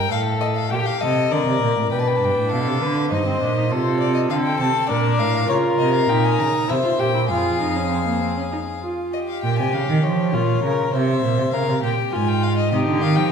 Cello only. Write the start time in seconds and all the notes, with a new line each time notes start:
Already playing: G2
0.12 A2
0.71 A#2
1.01 C3
1.31 D3
1.46 C3
1.61 A#2
1.76 A2
1.91 B2
2.21 G2
2.37 A2
2.52 B2
2.67 C3
2.81 D3
3.11 G2
3.41 A#2
3.71 C3
4.30 D3
4.60 C3
4.90 A#2
5.19 A2
5.49 C#3
5.79 C3
6.10 A#2
6.39 C#3
6.70 C3
7.00 A#2
7.30 F2
9.44 A#2
9.59 C3
9.73 C#3
9.89 D#3
10.04 F3
10.33 A#2
10.64 C#3
10.93 C3
11.23 A#2
11.38 C3
11.53 C#3
11.67 C3
11.82 A#2
12.12 G#2
12.72 C3
12.87 D3
13.02 D#3
13.16 F3